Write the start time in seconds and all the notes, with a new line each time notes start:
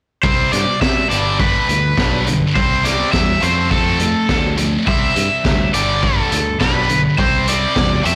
0.23 C2 C3 G3 C4 C5, kick
0.52 G2 C3 G3 D5, snare, closed hi-hat
0.82 C3 G3 E5, kick, snare
1.10 G1 G2 D3 G3 D5, closed hi-hat
1.40 G2 D3 G3 B4, kick
1.68 D2 G2 D3, closed hi-hat
1.97 B1 G2 D3 G3, kick, snare
2.27 G2 D3, closed hi-hat
2.55 C2 C3 G3 C4 C5, kick
2.84 C3 G3 C4 D5, snare, closed hi-hat
3.12 E2 C3 G3 E5, kick, snare
3.40 F2 F3 A3 C4 C5, closed hi-hat
3.70 F3 A3 C4 A4, kick
3.99 F3 A3, closed hi-hat
4.29 D2 F3 A3, kick, snare
4.57 F3 A3, closed hi-hat
4.86 C2 C3 G3 C4 E5, kick
5.15 G2 C3 G3, closed hi-hat
5.45 D2 C3 G3, kick, snare
5.73 G1 G2 D3 G3 D5, closed hi-hat
6.02 G2 D3 G3 A4, kick
6.32 D2 G2 D3, closed hi-hat
6.60 B1 G2 D3 G3 B4, kick, snare
6.89 G2 D3, closed hi-hat
7.18 C2 C3 G3 C4 C5, kick
7.46 C3 G3 C4 D5, closed hi-hat
7.75 E2 C3 G3, kick, snare
8.03 F2 F3 A3 C4 E5, closed hi-hat